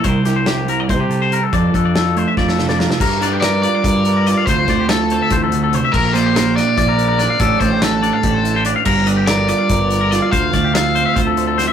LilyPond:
<<
  \new Staff \with { instrumentName = "Overdriven electric guitar" } { \time 7/8 \key f \major \tempo 4 = 144 r2. r8 | r2. r8 | r4 d''8 d''2 | c''4 a'4 r4. |
bes'8 c''4 d''2 | d''8 c''8 a'2 r8 | r4 d''8 d''2 | f''4 f''4 r4. | }
  \new Staff \with { instrumentName = "Clean electric guitar" } { \time 7/8 \key f \major c''8 g'16 c''16 g'8 bes'16 d''16 c''16 g'8 c''16 bes'16 a'16 | d''8 a'16 d''16 a'8 c''16 e''16 d''16 a'8 d''16 bes'16 a'16 | bes'8 d''16 g'16 bes'8 d''16 f''16 d''16 bes'8 bes'16 d''16 f''16 | c''8 d''16 g'16 a'8 c''16 e''16 c''16 a'8 a'16 c''16 e''16 |
bes'8 d''16 g'16 bes'8 d''16 f''16 d''16 bes'8 bes'16 d''16 f''16 | a'8 d''16 g'16 a'8 d''16 f''16 d''16 c''8 c''16 d''16 f''16 | bes'8 d''16 g'16 bes'8 d''16 f''16 d''16 bes'8 bes'16 d''16 f''16 | c''8 d''16 g'16 a'8 c''16 e''16 c''16 a'8 a'16 c''16 e''16 | }
  \new Staff \with { instrumentName = "Clean electric guitar" } { \time 7/8 \key f \major << { <g e' g' bes'>8 e'8 e'16 g'16 e'8 e'16 g'16 a'8 g'8 | a'8 d'8 f'8 d'8 f'8 a'8 f'8 | r4 bes'8 f'8 bes'8 bes'8 f'8 | <a c' f'>4 f'8 c'2 |
r4 g'8 d'8 e'16 g'16 bes'8 d'8 | <a d' g' a'>4 g'8 d'8 g'8 e'16 g'16 d'8 | r4 bes'8 f'8 bes'8 bes'8 f'8 | r4 f'8 c'8 f'8 c''8 c'8 | } \\ { c4. g4 c4 | f4. a4 c4 | g8 d'2. | d8 a4. e8 d8 c8 |
bes,8 bes2. | a,8 a2. | g8 d'2. | d8 a2. | } >> }
  \new Staff \with { instrumentName = "Fingered electric bass" } { \clef bass \time 7/8 \key f \major c,2 c4. | f,8 f,4. f,4. | g,2 g,4. | d,8 d,4. d,4. |
bes,,2 bes,,4. | a,,8 a,,4. a,,4. | g,,2 g,,4. | d,8 d,4. d,4. | }
  \new DrumStaff \with { instrumentName = "Drums" } \drummode { \time 7/8 <hh bd>8 <hh sn>8 <hh sn>8 hh8 <hh bd>8 hh8 hh8 | <hh bd>8 <hh bd>8 <hh sn>8 hh8 <bd sn>16 sn16 sn16 sn16 sn16 sn16 | <cymc bd>8 <hh sn>8 <hh sn>8 hh8 <hh bd>8 hh8 hh8 | <hh bd>8 <hh bd sn>8 <hh sn>8 hh8 <hh bd>8 hh8 hh8 |
<cymc bd>8 hh8 <hh sn>8 <hh sn>8 <hh bd>8 hh8 <hh sn>8 | <hh bd>8 <hh bd>8 <hh sn>8 hh8 <hh bd>8 hh8 hh8 | <cymc bd>8 hh8 <hh sn>8 hh8 <hh bd>8 hh8 <hh sn>8 | <hh bd>8 <hh bd sn>8 <hh sn>8 hh8 <hh bd>8 hh8 <hh sn>8 | }
>>